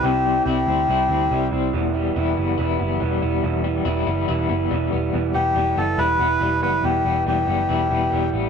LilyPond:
<<
  \new Staff \with { instrumentName = "Melodica" } { \time 4/4 \key e \minor \tempo 4 = 141 g'4 g'2~ g'8 r8 | r1 | r1 | r8 g'4 a'8 b'4. b'8 |
g'4 g'2~ g'8 r8 | }
  \new Staff \with { instrumentName = "Clean electric guitar" } { \time 4/4 \key e \minor <c g c' e'>8 g8 e'8 c'8 e'8 c'8 g8 c'8 | e,8 g8 e'8 b8 e'8 b8 g8 b8 | e,8 g8 e'8 b8 e'8 b8 g8 b8 | e,8 b8 g8 b8 e'8 b8 g8 b8 |
e,8 b8 g8 b8 e'8 b8 g8 b8 | }
  \new Staff \with { instrumentName = "Clean electric guitar" } { \time 4/4 \key e \minor <c g c' e'>8 <g c' e'>8 <c g c' e'>8 <g c' e'>8 <c g c' e'>8 <g c' e'>8 <c g c' e'>8 <g c' e'>8 | <e g b e'>8 <g b e'>8 <e g b e'>8 <g b e'>8 <e g b e'>8 <g b e'>8 <e g b e'>8 <g b e'>8 | <e g b e'>8 <g b e'>8 <e g b e'>8 <g b e'>8 <e g b e'>8 <g b e'>8 <e g b e'>8 <g b e'>8 | <e g b e'>8 <g b e'>8 <e g b e'>8 <g b e'>8 <e g b e'>8 <g b e'>8 <e g b e'>8 <g b e'>8 |
<e g b e'>8 <g b e'>8 <e g b e'>8 <g b e'>8 <e g b e'>8 <g b e'>8 <e g b e'>8 <g b e'>8 | }
  \new Staff \with { instrumentName = "Picked electric bass" } { \clef bass \time 4/4 \key e \minor c,4 c,8 d,8 c,8 d,8 c,8 c,8 | e,,4 e,,8 fis,,8 e,,8 fis,,8 e,,8 e,,8 | e,,4 e,,8 fis,,8 e,,8 fis,,8 e,,8 e,,8 | e,,8 e,,8 e,,8 fis,,8 e,,8 e,,8 e,,8 fis,,8 |
e,,8 e,,8 e,,8 fis,,8 e,,8 e,,8 e,,8 a,,8 | }
>>